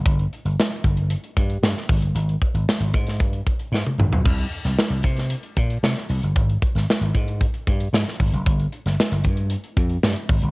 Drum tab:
CC |----------------|----------------|x---------------|----------------|
HH |xxxx-xxxxxxx-xox|xxxx-xxxxxxx----|-xxx-xxxxxxx-xox|xxxx-xxxxxxx-xox|
SD |----o-------oo--|----o--o----o---|---oo--o----oo--|---oo-------oo--|
T1 |----------------|-------------o--|----------------|----------------|
T2 |----------------|--------------o-|----------------|----------------|
FT |----------------|---------------o|----------------|----------------|
BD |o-----o---o---o-|--o---o-o-o-----|o-----o---o-----|o-o---o-o-o---o-|

CC |----------------|
HH |xxxx-xxxxxxx-xox|
SD |---oo-------o---|
T1 |----------------|
T2 |----------------|
FT |----------------|
BD |o-----o---o---o-|